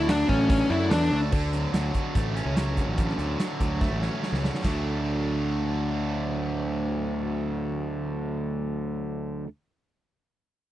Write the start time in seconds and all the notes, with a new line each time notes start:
Already playing: E4 A4 D5 F#5 C#6
0.00 D2
0.08 D3 F#3 A3 D4 D5, snare, open hi-hat
0.29 A1 C#4 C#5, kick
0.49 C#4 C#5, kick, open hi-hat
0.69 F#2 F#3 A3 D4 E4 E5
0.90 E2 D3 F#3 A3 D4 D5, snare, open hi-hat
1.02 snare
1.11 D2 F#3 A3 D4
1.32 D2 D3, kick, crash
1.53 F#3, closed hi-hat
1.74 D2 D3, snare, closed hi-hat
1.94 F#3, kick, closed hi-hat
2.15 A1 A3, kick, closed hi-hat
2.36 C#4, closed hi-hat
2.45 C#2
2.57 F#3, snare, closed hi-hat
2.77 D3, kick, closed hi-hat
2.87 A1
2.98 D3, kick, closed hi-hat
3.09 snare
3.18 D2 F#3, closed hi-hat
3.40 D3, snare, closed hi-hat
3.60 D2 F#3, kick, closed hi-hat
3.81 A3, kick, snare
3.91 A1
4.01 C#4, snare
4.21 F#3, snare
4.33 C#2, snare
4.43 D3, snare
4.55 snare
4.62 D2 D3 F#3 A3 D4, kick, snare, crash